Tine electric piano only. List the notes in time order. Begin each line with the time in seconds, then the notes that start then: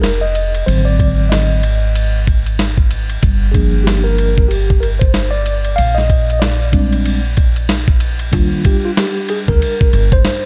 0.02 A#4
0.21 D#5
0.66 D3 F#3 C4 C5
0.85 D5
1.29 D#5
3.52 F3 A#3 D4 G#4
3.84 G4
4.04 A#4
4.48 G4
4.80 A#4
4.99 C5
5.31 D5
5.76 F5
5.95 D#5
6.33 D#5
6.40 D5
6.72 G3 G#3 C4 D4
8.32 G3 D4 F4
8.66 G4
8.85 F4
8.98 G4
9.30 G#4
9.48 A#4
10.13 C5